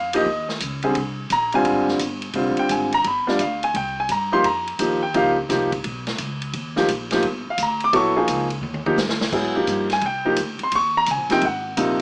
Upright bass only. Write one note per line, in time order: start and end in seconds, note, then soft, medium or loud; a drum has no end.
0.00 0.24 F2 medium
0.25 0.59 D#2 medium
0.61 0.94 C#2 medium
0.95 1.29 C2 medium
1.30 1.64 A#1 medium
1.65 1.99 G#1 medium
1.99 2.33 G1 medium
2.34 2.56 F1 medium
2.57 muted upright bass stroke soft
2.69 3.03 G#1 medium
3.04 3.26 G1 medium
3.26 muted upright bass stroke soft
3.39 3.73 D2 medium
3.74 4.08 C2 medium
4.09 4.43 G2 medium
4.44 4.78 F2 medium
4.79 5.13 D#2 medium
5.14 5.48 C#2 medium
5.49 5.83 C2 medium
5.84 6.18 B1 medium
6.18 6.52 C#2 medium
6.53 6.87 D#2 medium
6.88 7.22 A#1 medium
7.23 7.44 G1 medium
7.46 muted upright bass stroke soft
7.58 7.92 D2 medium
7.93 8.27 A#1 medium
8.28 8.60 C#2 medium
8.61 8.96 D#2 medium
8.96 9.09 G2 medium
9.08 9.19 D#2 medium
9.20 9.31 C#2 medium
9.32 9.66 G#2 medium
9.67 10.01 G2 medium
10.02 10.36 C2 medium
10.37 10.58 D2 medium
10.60 muted upright bass stroke soft
10.72 11.06 D#2 medium
11.07 11.17 C#2 medium
11.17 11.29 A#1 medium
11.29 11.41 F#1 medium
11.42 11.76 G#1 medium
11.77 12.02 A#1 medium